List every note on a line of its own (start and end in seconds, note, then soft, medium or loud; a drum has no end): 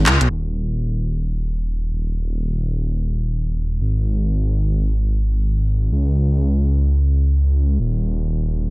0.06 0.18 C#2 medium
0.06 clap medium
0.06 closed hi-hat loud
0.21 0.28 B1 loud
0.21 closed hi-hat medium
0.30 1.92 D#1 medium
1.94 3.80 D#1 medium
3.81 5.90 G#1 medium
5.92 7.78 C#2 medium
7.80 8.70 D#1 medium